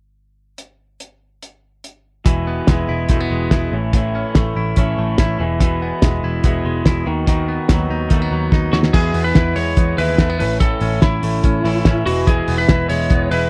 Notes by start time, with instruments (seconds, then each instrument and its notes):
0.58 closed hi-hat
1.00 closed hi-hat
1.43 closed hi-hat
1.84 closed hi-hat
2.25 picked electric bass E1, clean electric guitar E2 B2 E3 G#3 B3 E4, kick, closed hi-hat
2.47 clean electric guitar B3
2.67 picked electric bass E1, clean electric guitar E3 G#3 B3 E4, kick, snare, closed hi-hat
2.89 picked electric bass E1, clean electric guitar E4
3.09 picked electric bass E1, clean electric guitar E2 B2 E3 G#3 A3 B3 E4, kick, closed hi-hat
3.20 clean electric guitar B3
3.30 picked electric bass E1, clean electric guitar G#3
3.51 picked electric bass E1, clean electric guitar E4, kick, snare, closed hi-hat
3.72 picked electric bass A1, clean electric guitar A2 A3 C#4 E4
3.92 clean electric guitar A2 E3 A3, kick, closed hi-hat
3.96 clean electric guitar C#4 E4
4.15 clean electric guitar C#4
4.35 picked electric bass A1, clean electric guitar A3, kick, snare, closed hi-hat
4.56 picked electric bass A1, clean electric guitar E4
4.76 picked electric bass A1, clean electric guitar A2 E3 A3 C#4 E4, kick, closed hi-hat
4.98 picked electric bass A1, clean electric guitar A3
5.18 picked electric bass A1, clean electric guitar E4, kick, snare, closed hi-hat
5.39 picked electric bass E1, clean electric guitar E3 G#3 B3 E4
5.59 clean electric guitar E2 B2 E3 G#3, kick, closed hi-hat
5.63 clean electric guitar B3 E4
5.82 clean electric guitar B3
6.02 picked electric bass E1, clean electric guitar G#3, kick, snare, closed hi-hat
6.23 picked electric bass E1, clean electric guitar E4
6.43 picked electric bass E1, clean electric guitar E2 B2 E3 G#3 B3 E4, kick, closed hi-hat
6.65 picked electric bass E1, clean electric guitar G#3
6.85 picked electric bass E1, clean electric guitar E4, kick, snare, closed hi-hat
7.06 picked electric bass D#2, clean electric guitar D#3 B3 D#4 F#4
7.26 clean electric guitar D#3 B3 D#4 F#4, kick, closed hi-hat
7.49 clean electric guitar B3
7.68 picked electric bass D#2, clean electric guitar D#3 F#3 B3 D#4 F#4, kick, snare, closed hi-hat
7.90 picked electric bass D#2, clean electric guitar D#4
8.09 picked electric bass D#2, clean electric guitar D#3 A3 B3 D#4, kick, closed hi-hat
8.14 clean electric guitar F#4
8.22 clean electric guitar B3
8.31 picked electric bass D#2, clean electric guitar F#3
8.52 picked electric bass D#2, clean electric guitar D#4, kick, snare
8.73 picked electric bass D#2, clean electric guitar F#3, lead electric guitar F#4, snare
8.83 snare
8.93 clean electric guitar E2 B2 E3 G#3 B3 E4, picked electric bass E2, lead electric guitar G#4, kick, crash
9.14 picked electric bass E2, clean electric guitar B3, open hi-hat
9.24 clean electric guitar E3 G#3 B3 E4, lead electric guitar B4
9.35 picked electric bass E2, clean electric guitar E4, kick, snare, closed hi-hat
9.56 picked electric bass E2, clean electric guitar G#3, lead electric guitar C#5, open hi-hat
9.77 picked electric bass E2, clean electric guitar B3, kick, closed hi-hat
9.97 picked electric bass D#2, clean electric guitar E3 G#3 B3 E4, lead electric guitar B4, open hi-hat
10.17 picked electric bass E2, clean electric guitar E3 G#3 A3 B3 E4, kick, snare, closed hi-hat
10.30 clean electric guitar B3
10.38 picked electric bass A1, clean electric guitar A2 E3 A3 C#4 E4, lead electric guitar B4, open hi-hat
10.60 clean electric guitar A2 E3 A3 C#4 E4, lead electric guitar A4, kick, closed hi-hat
10.81 picked electric bass A1, clean electric guitar C#4, open hi-hat
10.90 clean electric guitar A3 C#4 E4
11.02 picked electric bass A1, lead electric guitar E4, clean electric guitar E4, kick, snare, closed hi-hat
11.23 picked electric bass A1, clean electric guitar A3, open hi-hat
11.44 picked electric bass A1, clean electric guitar C#4, kick, closed hi-hat
11.64 picked electric bass A1, clean electric guitar E3 A3 C#4 E4, open hi-hat
11.85 picked electric bass A1, clean electric guitar E3 A3 C#4 E4, kick, snare, closed hi-hat
12.06 picked electric bass E1, clean electric guitar E3 G#3 B3 E4, lead electric guitar F#4, open hi-hat
12.27 clean electric guitar E2 B2 E3 G#3 B3 E4, lead electric guitar G#4, kick, closed hi-hat
12.48 picked electric bass E1, clean electric guitar B3, open hi-hat
12.58 clean electric guitar E3 G#3 B3 E4, lead electric guitar B4
12.68 picked electric bass E1, clean electric guitar E4, kick, snare, closed hi-hat
12.89 picked electric bass E1, clean electric guitar G#3, lead electric guitar C#5, open hi-hat
13.10 picked electric bass E1, clean electric guitar B3, kick, closed hi-hat
13.31 picked electric bass E1, clean electric guitar E3 G#3 B3 E4, lead electric guitar B4, open hi-hat